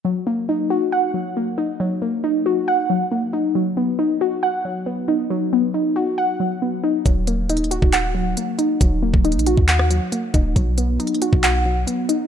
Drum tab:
HH |------------------------------------------------|------------------------------------------------|------------------------------------------------|------------------------------------------------|
CP |------------------------------------------------|------------------------------------------------|------------------------------------------------|------------------------------------------------|
SD |------------------------------------------------|------------------------------------------------|------------------------------------------------|------------------------------------------------|
BD |------------------------------------------------|------------------------------------------------|------------------------------------------------|------------------------------------------------|

HH |x-----x-----x-x-x-x-----x-----------x-----x-----|x-----------x-x-x-x-----x-----x-----x-----x-----|x-----x-----x-x-x-x-----x-----------x-----x-----|
CP |------------------------x-----------------------|------------------------x-----------------------|------------------------x-----------------------|
SD |------------------------------------------------|---------------------------r--------------------|------------------------------------------------|
BD |o--------------------o--------------------------|o--------o-----------o--------------------o-----|o--------------------o--------------------------|